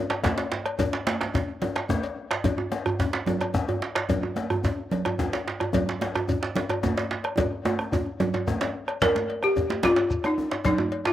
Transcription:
0.10 bombo rim, cowbell, djembe slap, high conga, shekere
0.24 bombo low, djembe slap, high conga, djembe bass, shekere
0.37 cowbell, djembe slap, djembe tone
0.52 djembe slap
0.65 bombo rim, cowbell, high conga
0.79 bombo rim, bombo low, cowbell, djembe tone, low conga, djembe bass, shekere
0.93 bombo rim, djembe slap, shekere
1.07 bombo rim, cowbell, djembe slap, high conga
1.21 bombo rim, djembe slap, djembe tone
1.34 bombo low, cowbell, djembe slap, djembe bass, shekere
1.48 djembe slap
1.62 cowbell, high conga, djembe tone, low conga
1.76 bombo rim, cowbell, djembe slap
1.89 bombo low, djembe slap, high conga, djembe bass, shekere
2.03 cowbell, high conga, djembe tone, shekere
2.31 bombo rim, cowbell, djembe slap, high conga
2.44 bombo low, cowbell, djembe slap, djembe tone, djembe bass, low conga, shekere
2.58 high conga, djembe tone
2.72 cowbell, djembe slap, high conga
2.86 bombo rim, djembe tone, djembe bass, shekere
2.99 bombo low, cowbell, djembe slap, djembe bass, shekere
3.13 djembe slap, high conga
3.26 bombo rim, cowbell, djembe slap, djembe tone, low conga
3.40 bombo rim, cowbell, high conga, djembe tone, shekere
3.54 bombo low, djembe slap, high conga, djembe bass, shekere
3.68 cowbell, djembe tone, djembe bass
3.82 djembe slap
3.95 bombo rim, cowbell, djembe slap, high conga
4.09 bombo low, cowbell, djembe slap, djembe tone, low conga, djembe bass, shekere
4.23 high conga, djembe tone
4.36 cowbell, djembe slap, high conga
4.50 bombo rim, djembe tone, djembe bass, shekere
4.64 bombo low, cowbell, djembe slap, djembe bass, shekere
4.78 djembe slap, high conga
4.91 bombo rim, cowbell, djembe slap, djembe tone, low conga
5.05 bombo rim, cowbell, djembe tone, shekere
5.19 bombo low, djembe slap, djembe tone, djembe bass, shekere
5.33 cowbell, djembe slap, djembe tone
5.48 djembe slap
5.60 bombo rim, cowbell, high conga, djembe tone
5.73 bombo low, cowbell, djembe slap, djembe tone, djembe bass, low conga, shekere
5.75 djembe tone
5.89 djembe slap
6.01 cowbell, djembe slap, high conga
6.15 bombo rim, djembe tone, shekere
6.28 bombo low, cowbell, djembe tone, djembe bass, shekere
6.42 djembe slap
6.56 bombo rim, cowbell, djembe slap, djembe tone, low conga
6.69 bombo rim, cowbell, djembe tone, high conga, shekere
6.83 bombo low, djembe slap, high conga, djembe tone, djembe bass, shekere
6.97 cowbell, djembe slap, djembe tone
7.11 djembe slap
7.24 bombo rim, cowbell, high conga
7.37 bombo low, cowbell, djembe slap, high conga, djembe tone, low conga, djembe bass, shekere
7.52 djembe slap
7.65 bombo rim, cowbell, djembe slap, high conga, djembe tone, shekere
7.79 bombo rim, djembe tone
7.92 bombo rim, bombo low, cowbell, djembe tone, djembe bass, shekere
8.06 high conga
8.20 bombo rim, cowbell, djembe slap, djembe tone, low conga, shekere
8.34 cowbell, djembe slap, high conga, djembe tone, shekere
8.47 bombo rim, bombo low, djembe slap, high conga, djembe bass, shekere
8.61 cowbell, djembe slap, djembe tone
8.88 bombo rim, cowbell
9.01 A#4, bombo low, cowbell, djembe slap, djembe bass, low conga, shekere
9.15 bombo rim, djembe slap, high conga
9.30 cowbell
9.43 G4, bombo rim, djembe slap, shekere
9.56 bombo low, cowbell, djembe tone, shekere
9.70 djembe slap, high conga
9.83 F4, bombo rim, cowbell, djembe slap, low conga, djembe bass, shekere
9.96 cowbell, djembe slap, high conga
10.10 bombo rim, bombo low, shekere
10.24 D#4, bombo rim, cowbell, djembe slap, high conga, shekere
10.38 djembe tone, high conga
10.51 bombo rim, cowbell, djembe slap, high conga
10.64 D#4, bombo low, cowbell, djembe slap, djembe bass, low conga, shekere
10.78 bombo rim, high conga, djembe tone
10.92 cowbell
11.05 F4, bombo rim, djembe slap, shekere

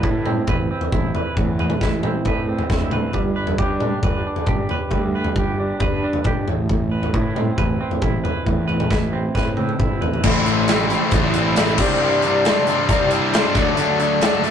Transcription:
Already playing: A2 B4
0.03 A2 E4, kick
0.26 C4, mid tom
0.47 A1 B4, kick, floor tom
0.71 C4
0.81 floor tom
0.92 A1 E4, kick, mid tom
1.15 B4, floor tom
1.37 E2 A2, kick, floor tom
1.59 B4, floor tom
1.70 floor tom, mid tom
1.81 A1 E4, kick, snare
2.03 C4, mid tom
2.25 A2 B4, kick, floor tom
2.49 C4
2.59 floor tom
2.70 D2 E4, kick, snare, floor tom
2.81 floor tom
2.91 B4, floor tom, mid tom
3.13 G1 G3, kick, floor tom
3.36 B4
3.47 floor tom
3.58 G2 G4, kick
3.80 D4, mid tom
4.03 G1 B4, kick, floor tom
4.27 D4
4.36 floor tom
4.46 G1 G4, kick, mid tom
4.69 B4, floor tom
4.91 D2 G3, kick, floor tom
5.15 B4
5.24 floor tom
5.36 G1 G4, kick
5.60 D4
5.80 G2 B4, kick, floor tom
6.04 D4
6.13 floor tom
6.24 G1 G4, kick, mid tom
6.48 A1 A2, floor tom
6.69 A2, kick, floor tom
6.92 B4
7.03 floor tom
7.14 A2 E4, kick
7.36 C4, mid tom
7.58 A1 B4, kick, floor tom
7.81 C4
7.91 floor tom
8.02 A1 E4, kick, mid tom
8.24 B4, floor tom
8.46 E2 A2, kick, floor tom
8.68 B4, floor tom
8.80 floor tom, mid tom
8.90 A1 E4, kick, snare
9.13 C4
9.35 A2 B4, kick, snare
9.57 C4, high tom
9.69 high tom
9.79 G1 E4, kick, mid tom
10.01 A1 B4, floor tom
10.14 floor tom
10.23 A1 A2 E3 A3 C4 E4, kick, crash
10.46 A3 C4 E4, closed hi-hat
10.68 E3 A3 C4 E4, snare, closed hi-hat
10.90 A2 E3 A3 C4 E4, closed hi-hat
11.11 A1 E3 A3 C4, kick, closed hi-hat
11.16 E4
11.34 C4 E4, closed hi-hat
11.38 A3
11.56 A2 E3 A3 C4, snare, closed hi-hat
11.60 E4
11.67 closed hi-hat
11.78 C2 C3 G3 C4 D4, kick, crash
12.00 C3 G3 C4 D4
12.22 G3 C4 D4, closed hi-hat
12.45 C3 G3 C4 D4, snare, closed hi-hat
12.67 C3 G3 C4 D4, closed hi-hat
12.89 C2 C3 G3 C4 D4, kick, closed hi-hat
13.11 C4 D4, closed hi-hat
13.15 G3
13.33 C3 G3 C4 D4, snare, closed hi-hat
13.46 snare
13.54 D2 D3 F#3 A3 D4, kick, closed hi-hat
13.77 D2 D3 F#3 A3 D4, closed hi-hat
13.98 F#3 A3 D4, closed hi-hat
14.20 D3 F#3 A3 D4, snare, closed hi-hat
14.42 D3 F#3 A3 D4, closed hi-hat

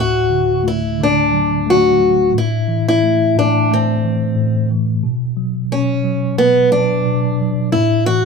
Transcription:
Already playing: D2 A2
0.00 F#4
0.30 D3
0.63 A3
0.68 E4
0.99 D3
1.03 D4
1.33 F#3
1.67 A3 F#4
1.99 F#3
2.34 A2
2.38 E4
2.68 E3
2.88 E4
3.03 A3
3.36 A2 D4
3.71 A3 C4
4.04 E3
4.36 A2
4.70 E3
5.03 B2
5.37 F#3
5.71 B2 C#4
6.04 F#3
6.38 B2 B3
6.72 F#3 D4
7.06 B2
7.41 F#3
7.72 A2 E4
8.06 E3 F#4

